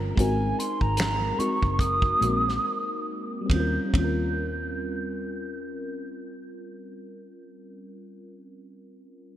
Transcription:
Already playing: G1 G3 C4 C#4 F4 A#4
0.16 G#1 G#3 C4 D#4 F#4 G#5, kick, closed hi-hat
0.20 A#4
0.59 C6, closed hi-hat
0.81 G#1 A#5, kick
0.97 finger snap, snare, closed hi-hat
1.37 G#3 C4 D#4 F#4 C#6, muted fingered electric bass stroke, closed hi-hat
1.41 A#4
1.62 F#1, kick
1.79 D#6, kick, closed hi-hat
2.02 kick
2.20 A#1 G#3 A#3 D#4 F#4, closed hi-hat
2.24 C4 A#4
2.48 snare
3.41 G3
3.46 C4, kick
3.50 D#2 C#4 G6, ride
3.55 F4
3.60 A#4
3.86 G3
3.90 C4, kick
3.94 D#2 C#4 G6, ride
3.99 F4
4.04 A#4

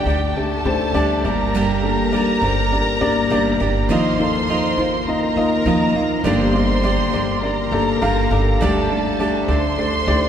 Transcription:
Already playing: D3 A3 D4 G4 D5 G5
0.05 D2 A3 D4 G4 A4 D5
0.10 D4
0.36 A3 D4 G4 A4 D5 A5
0.65 D2 A3 D4 G4 C5
0.94 D2 G3 A3 D4 G4 D5
0.99 A4
1.24 G1 G2 A#3 D4 G4 A#4 D5 A#5
1.28 G3
1.54 G2 D3 G3 A#3 G4 A#4
1.82 A#3 D4 G4 A4
2.12 G3 A#3 D4 G4 D5
2.16 A#4
2.42 G1 G3 A#3 D4 G4 A#4 C5
2.72 A#3 D4 G4 D5
3.01 G1 A#3 D4 G4 D5
3.30 G1 G3 A#3 D4 G4 A#4 D5
3.60 G1 G3 A#3 D4 G4 A#4 D5
3.89 D#2 D#3 F3 A#3 D#4 F4 A#4 C5 D#5 C6
4.19 A#3 D#4 F4 A4
4.48 F3 A#3 D#4 F4 A#4 D#5
4.77 D#2 A#3 D#4 F4 A#4 C5
5.06 A#3 D#4 F4 A#4 D#5 A#5
5.36 D#2 A#3 D#4 F4 D#5
5.65 D#2 F3 A#3 D#4 F4 A#4 D#5
5.95 D#2 A#3 D#4 F4 A#4 D#5
5.99 A#3
6.24 G1 G2 D3 G3 A#3 D4 G4 A#4 C5 D5 C6
6.54 A#3 D4 G4 D5
6.83 G3 A#3 D4 G4 A#4 D5
7.13 G1 G3 A#3 D4 G4 A#4 D5
7.42 A#3 D4 G4 A#4 D5 A#5
7.71 G1 A#3 D4 G4 A4
8.01 G1 G3 A#3 D4 G4 A#4 F5
8.31 G1 G3 A#3 D4 G4 A4 A#4
8.60 D2 D3 G3 A3 D4 G4 A4 D5 A5
8.90 A3 D4 G4 D5
9.19 G3 A3 D4 G4 A4 D5
9.48 D2 A3 D4 G4 A4 C5 D5 C6
9.52 D4
9.78 A3 D4 G4 D5
10.07 D2 A3 D4 G4 D5

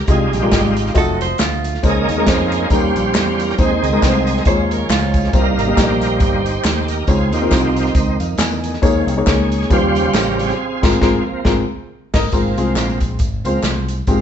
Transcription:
0.04 C2 G3 G#3 A#4, closed hi-hat
0.08 C3 G#3 D#4 F4 G4 G#4 D#5, kick, tambourine
0.33 A#1 D#4 G4, closed hi-hat, tambourine
0.43 G#3 F4 G4 A#4
0.51 G#1 G3 F4 G4 D#5, kick, snare, clap, closed hi-hat, tambourine
0.57 G#3
0.77 closed hi-hat, tambourine
0.86 snare
0.94 F1 F#3 A3 D#4 F4 F#4 A4 D#5, kick, closed hi-hat, tambourine
1.21 C5, closed hi-hat, tambourine
1.38 D2 F4, snare, clap, closed hi-hat, tambourine
1.64 closed hi-hat, tambourine
1.74 snare
1.83 C#2 C#3 G#3 A#3 C#4 D#4 G#4 A#4 C5 D#5, kick, closed hi-hat, tambourine
2.09 D#2, closed hi-hat, tambourine
2.18 G#3 C#4 D#4 A#4
2.23 C#5, snare, closed hi-hat
2.27 F2 G#3 C4 D#4 G#4 C5, kick, clap, tambourine
2.32 C#4
2.52 closed hi-hat, tambourine
2.70 D#2 D#3 G3 C#4 D#4 F4 G4 A#4 C5, kick, closed hi-hat, tambourine
2.95 A#1, closed hi-hat, tambourine
3.14 E2, snare, clap, closed hi-hat, tambourine
3.40 A#4, closed hi-hat, tambourine
3.50 snare
3.58 D#2 D#3 G#3 C4 D#4 G#4 C5, kick, closed hi-hat, tambourine
3.83 C#2 D#5, closed hi-hat, tambourine
3.92 G#3 C4 D#4 A#4
4.01 C2 G#3 C4 D#4 B4, kick, snare, clap, closed hi-hat, tambourine
4.07 C5
4.12 F5
4.23 D#5
4.27 closed hi-hat, tambourine
4.32 C#5
4.37 D#5, snare
4.45 D#2 D#3 F3 G#3 C#4 D#4 F4 C5 C#5, kick, closed hi-hat, tambourine
4.71 A#4, closed hi-hat, tambourine
4.89 C#2 F4, snare, clap, closed hi-hat, tambourine
5.14 kick, closed hi-hat, tambourine
5.24 snare
5.33 C2 C3 G3 A#3 D#4 G4 A#4 C5 F5, kick, closed hi-hat, tambourine
5.58 G#1, closed hi-hat, tambourine
5.67 A#3 D#4 G4 D#5
5.77 A#1 A#3 D#4 G4 C5 D5, kick, snare, clap, closed hi-hat, tambourine
5.82 D#5
6.01 closed hi-hat, tambourine
6.20 G1 G3 A#3 D#4 G4 C5, kick, closed hi-hat, tambourine
6.46 closed hi-hat, tambourine
6.64 D#2, snare, clap, closed hi-hat, tambourine
6.83 A4
6.88 A#4, closed hi-hat, tambourine
7.07 C#2 C#3 C4 D#4 F4 G#4 C#5, kick, closed hi-hat, tambourine
7.33 D#2 D#3 C4 D#4 G4, closed hi-hat, tambourine
7.41 C4 D#4 F4 A#4
7.50 C2 C4 D#4 F4 C5, kick, snare, clap, closed hi-hat, tambourine
7.77 closed hi-hat, tambourine
7.86 snare
7.95 C#2, kick, closed hi-hat, tambourine
8.20 F2 F5, closed hi-hat, tambourine
8.38 E2 G#5, snare, clap, closed hi-hat, tambourine
8.64 closed hi-hat, tambourine
8.73 snare
8.82 D#2 D#3 F3 G#3 A#3 C#4 D#4 G#4 C#5, kick, closed hi-hat, tambourine
9.07 C2, closed hi-hat, tambourine
9.17 A#3 D#4 G#4 C#5
9.26 C#2 A#3 C#4 D#4 G#4 C#5, kick, snare, clap, closed hi-hat, tambourine
9.51 closed hi-hat, tambourine
9.61 snare
9.70 D#2 C#3 D#3 F3 G3 C#4 F4 G4 B4 C5, kick, closed hi-hat, tambourine
9.76 C5
9.95 closed hi-hat, tambourine
10.13 A1 A#4, snare, clap, closed hi-hat, tambourine
10.39 C4 F4 G#4, closed hi-hat, tambourine
10.49 snare
10.82 G#1 G#3 C4 F4 A#4, kick, snare, crash
11.01 G#1 G#3 C4 F4 A#4, kick, snare
11.26 F3 A#3 C4
11.45 G#1 G#3 C4 F4 A#4, kick, snare
12.14 G#1 A#4 D#5, kick, snare, crash
12.32 G#1 G#2 F3 G#3 A#3 C4 F4 A#4, kick, closed hi-hat, tambourine
12.57 C2 G#3 C4 F4 G#4, closed hi-hat, tambourine
12.76 A#1, snare, clap, closed hi-hat, tambourine
13.01 kick, closed hi-hat, tambourine
13.19 G#1, kick, closed hi-hat, tambourine
13.44 C#2 F3 G#3 A#3 C4 F4 C5, closed hi-hat, tambourine
13.62 C2, snare, clap, closed hi-hat, tambourine
13.88 closed hi-hat, tambourine
14.07 G#1 G#2 F3 G#3 A#3 C4 F4 G4, kick, closed hi-hat, tambourine

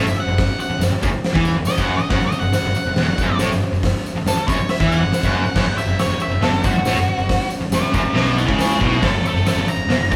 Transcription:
Already playing: E5
0.05 F#1 F#2, tambourine
0.16 F#5, muted distorted electric guitar stroke, muted picked electric bass stroke
0.26 F#1 F#2, tambourine
0.38 kick, snare, open hi-hat
0.60 F#5, tambourine
0.70 muted distorted electric guitar stroke, muted picked electric bass stroke
0.79 F#1 F#2, snare, open hi-hat, tambourine
0.91 muted distorted electric guitar stroke, muted picked electric bass stroke
1.02 F#1 F#2, kick, tambourine
1.12 muted distorted electric guitar stroke, muted picked electric bass stroke, tambourine
1.24 snare, open hi-hat
1.33 E2 E3, kick
1.45 tambourine
1.54 F#1 F#2
1.65 D#5, muted picked electric bass stroke, muted distorted electric guitar stroke, snare, open hi-hat, tambourine
1.77 F#1 F#2, kick, tambourine
1.82 F#5
1.96 D#5, muted picked electric bass stroke, muted distorted electric guitar stroke, tambourine
2.10 F#1 F#2 F#5, kick, snare, open hi-hat
2.19 F#1 F#2
2.26 D#5
2.31 muted picked electric bass stroke, muted distorted electric guitar stroke, tambourine
2.40 F#1 F#2 F#5, tambourine
2.52 F#5, muted picked electric bass stroke, muted distorted electric guitar stroke, snare, open hi-hat, tambourine
2.63 F#1 F#2
2.74 muted picked electric bass stroke, muted distorted electric guitar stroke, tambourine
2.85 F#1 F#2, tambourine
2.95 E1 E2, snare, open hi-hat
3.06 F#1 F#2
3.18 F#1 F#2, kick, tambourine
3.28 F#1 F#2
3.39 A1 A2, snare, open hi-hat, tambourine
3.50 F#1 F#2, tambourine
3.61 muted picked electric bass stroke, muted distorted electric guitar stroke
3.72 F#1 F#2, tambourine
3.83 kick, snare, open hi-hat, tambourine
3.95 tambourine
4.06 tambourine
4.15 muted picked electric bass stroke, muted distorted electric guitar stroke
4.24 F#1 F#2 A4, snare, open hi-hat, tambourine
4.35 muted picked electric bass stroke, muted distorted electric guitar stroke
4.47 F#1 F#2 C#5, kick, tambourine
4.58 muted picked electric bass stroke, muted distorted electric guitar stroke, tambourine
4.69 E5, snare, open hi-hat, tambourine
4.80 E2 E3, kick, tambourine
4.89 F#5, tambourine
5.01 F#1 F#2
5.11 muted distorted electric guitar stroke, muted picked electric bass stroke, snare, open hi-hat, tambourine
5.23 F#1 F#2, kick, tambourine
5.35 tambourine
5.45 muted distorted electric guitar stroke, muted picked electric bass stroke, tambourine
5.55 F#1 F#2, kick, snare, crash
5.65 F#1 F#2
5.75 E5, muted picked electric bass stroke, muted distorted electric guitar stroke, tambourine
5.87 F#1 F#2, tambourine
5.97 C#5, muted picked electric bass stroke, muted distorted electric guitar stroke, snare, open hi-hat, tambourine
6.06 F#1
6.11 F#2
6.18 muted picked electric bass stroke, muted distorted electric guitar stroke, tambourine
6.22 E5
6.28 F#1 F#2, tambourine
6.39 E1 E2 A4, snare, open hi-hat
6.51 F#1 F#2
6.63 F#1 F#2 F#4, kick, tambourine
6.73 F#1
6.77 F#2
6.82 A1, snare, open hi-hat, tambourine
6.87 A2
6.94 F#1 F#2, tambourine
7.05 muted picked electric bass stroke, muted distorted electric guitar stroke
7.18 F#1 F#2, tambourine
7.29 kick, snare, open hi-hat
7.50 tambourine
7.61 muted distorted electric guitar stroke, muted picked electric bass stroke, tambourine
7.71 F#1 F#2 A#4 F#5, snare, open hi-hat, tambourine
7.82 muted distorted electric guitar stroke, muted picked electric bass stroke
7.92 F#1 F#2 A#4 F#5, kick, tambourine
8.04 muted picked electric bass stroke, muted distorted electric guitar stroke, tambourine
8.13 B1 B2 A#4 F#5, snare, open hi-hat
8.38 C#5 A5, tambourine
8.46 C#2 C#3, kick
8.59 C#5 A5, snare, open hi-hat, tambourine
8.71 tambourine
8.80 B1 B2 C#5 A5, kick
8.93 tambourine
9.01 F#1 F#2 E5 C#6, kick, snare, open hi-hat
9.12 F#1 F#2
9.23 muted distorted electric guitar stroke, muted picked electric bass stroke, tambourine
9.27 E5 C#6
9.33 F#1 F#2, tambourine
9.45 E5 C#6, muted picked electric bass stroke, muted distorted electric guitar stroke, snare, open hi-hat, tambourine
9.56 F#1 F#2
9.67 A#5, muted picked electric bass stroke, muted distorted electric guitar stroke, tambourine
9.76 F#1 F#2, tambourine
9.87 E1 E2, snare, open hi-hat
9.99 F#1 F#2
10.11 F#1 F#2, kick, tambourine

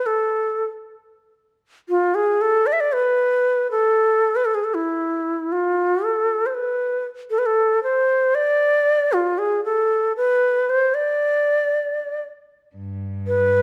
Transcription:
0.06 A4
1.89 F4
2.15 G#4
2.41 A4
2.67 D5
2.73 E5
2.80 D5
2.94 B4
3.71 A4
4.36 B4
4.45 A4
4.55 G#4
4.64 A4
4.75 E4
5.52 F4
6.04 A4
6.46 C5
6.55 B4
7.30 A4
7.38 B4
7.46 A4
7.83 C5
8.35 D5
9.13 F4
9.38 G#4
9.65 A4
10.17 B4
10.69 C5
10.94 D5
12.76 G2
13.27 B4

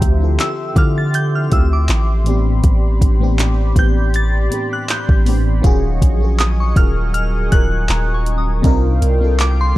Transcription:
Already playing: D3 F3 C4 E4 F4 G4 E5 G5 C6 G6
0.02 D2, kick, closed hi-hat
0.19 D3 C4 E4 F4
0.24 A4
0.40 E6, clap, closed hi-hat
0.74 D3 C4 E4 F4 D6, kick, closed hi-hat
0.78 G4 F6
0.98 A6
1.14 G6, closed hi-hat
1.35 F6
1.49 D2 D3 C4 E4 F4 E6, kick, closed hi-hat
1.54 G4
1.73 D6
1.89 A1, clap, closed hi-hat
2.24 A2 E3 B3 C4 D4 G4 D5 B5, closed hi-hat
2.29 G4
2.64 A1, kick, closed hi-hat
3.01 A1, kick, closed hi-hat
3.19 A2 E3 B3 C4 D4
3.24 G4
3.39 clap, closed hi-hat
3.74 A1 A2 E3 B3 C4 D4, kick, closed hi-hat
3.79 G4 G6
4.14 A6, closed hi-hat
4.49 A2 E3 B3 C4 D4, closed hi-hat
4.54 G4
4.73 F#6
4.89 G6, clap, closed hi-hat
5.09 A1, kick
5.24 A2 E3 B3 C4 D4, open hi-hat
5.29 G4
5.62 D#3 F#3 C#4 F4 F#4 D#5 G#5 C#6, kick, closed hi-hat
5.66 G#4
6.02 A#1, kick, closed hi-hat
6.20 D#3 C#4 F4 F#4
6.24 G#4
6.39 D#6, clap, closed hi-hat
6.60 C#6
6.74 D#1 D#3 C#4 F4 F#4 F6, kick, closed hi-hat
6.79 A#4
7.14 F6, closed hi-hat
7.50 D#1 D#3 C#4 F4 F#4 F#6, kick, closed hi-hat
7.54 A#4
7.89 D#1 A#5, clap, closed hi-hat
8.14 C#6
8.26 closed hi-hat
8.38 D#6
8.62 C2 C3 C4 D4 D#4 F4 F5 G5, kick, closed hi-hat
8.67 A#4
9.02 C2, closed hi-hat
9.19 C3 C4 D4 D#4 F4
9.24 A4
9.40 D6, clap, closed hi-hat
9.61 C6
9.74 C3

